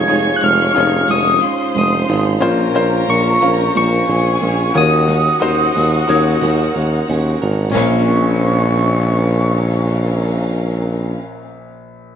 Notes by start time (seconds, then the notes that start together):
Already playing: D#4 F4 G#4 C#5 C#6 G#6
0.08 F1 G#3 C#4 D#4 F4 G#4 C#5
0.36 F#6
0.41 F1 G#3 C#4 D#4 F4 F6
0.74 F1 G#3 C#4 D#4 F4 G#4 C#5
1.08 F1 F2 D#3 G#3 C#4 D#4 F4 D#6
1.41 G#3 C#4 D#4 F4 C5 C6
1.75 F1 G#3 C#4 D#4 F4 D#6
2.08 G#1 G#3 C#4 D#4 F4
2.40 A#1 A#2 A#3 C#4 F4 A#4 C5 A#5
2.74 A#1 C#4 F4 A#4 C5
3.08 A#1 A#3 C#4 F4 C5 C#6
3.41 A#1 C#4 F4 A#4 C5 F5
3.75 A#1 A#2 A#3 C#4 F4 C5 C#6
4.08 A#1 C#4 F4 G#4 C5 G#5
4.41 A#1 A#3 C#4 F4 C5
4.74 D#2 D#3 C#4 D#4 F4 F#4 A#4 C#5 F#5 D#6
4.81 F#4
5.08 D#3 C#4 F#4 A#4
5.40 D#2 D#4 F#4 A#4 C5
5.44 C#4
5.75 D#2 D#3 C#4 F#4 A#4
6.08 D#2 C#4 D#4 F#4 A#4 C#5
6.41 D#2 D#3 C#4 F#4 A#4
6.74 D#2 C#4 F#4 A#4
7.08 D#2 D#3 C#4 F#4 A#4
7.42 G#1 C#4 F#4 A#4
7.70 A#2 C#4
7.75 A#1 A#3 C#4 A#4 F5 C#6
7.81 C#4
7.86 F4
7.90 C5